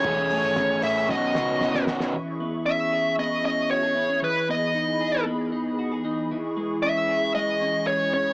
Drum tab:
HH |x-o-x-o---------|----------------|----------------|----------------|
SD |----o---o-o-oooo|----------------|----------------|----------------|
BD |o---o---o---o---|----------------|----------------|----------------|